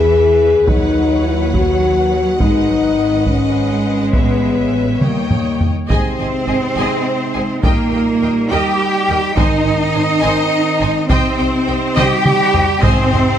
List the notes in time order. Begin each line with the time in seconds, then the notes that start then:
Already playing: E2 E3 G#4 B4 E5
0.67 D#2 F#3 D#4 C#5 F#5, taiko
1.25 E4
1.54 F#4, taiko
2.40 G#1 G#3 D#4 B4 D#5, taiko
2.70 F#3
2.99 D#3
3.26 G#3 C#4, taiko
4.13 A1 B3 C#5 E5, taiko
5.01 D#2 G3 A#3 C#5 D#5 G5, taiko mid
5.30 taiko low-mid
5.60 taiko low
5.88 G#1 C3 G#3 C4 D#4 G#4 C5 D#5 G#5, taiko
6.18 G#1 G#4 D#5 G#5
6.47 G#1 G#4 D#5 G#5
6.77 G#1 G#4 D#5 G#5
7.34 G#1 G#4 D#5 G#5
7.63 D#2 A#2 G3 A#3 A#4 D#5 G5, taiko
7.92 D#2 A#4 D#5 G5
8.21 D#2 A#4 D#5 G5
8.50 D#2 G3 G4 A#4 D#5 G5
9.08 D#2 A#4 D#5 G5
9.37 G#1 G#2 D#3 C4 D#4 C5 D#5 G#5, taiko
9.66 G#1 C5 D#5 G#5
9.94 G#1 C5 D#5 G#5
10.22 G#1 C5 D#5 G#5
10.80 G#1 C5 D#5 G#5
11.09 C2 C3 C4 C5 D#5 G5, taiko
11.38 C2 C5 D#5 G5
11.68 C2 C5 D#5 G5
11.97 C2 G3 G4 C5 D#5 G5, taiko mid
12.26 taiko mid
12.53 C2 C5 D#5 G5, taiko low
12.81 G#1 G#2 C3 C4 D#4 C5 D#5 G#5, taiko
13.10 G#1 C5 D#5 G#5, taiko low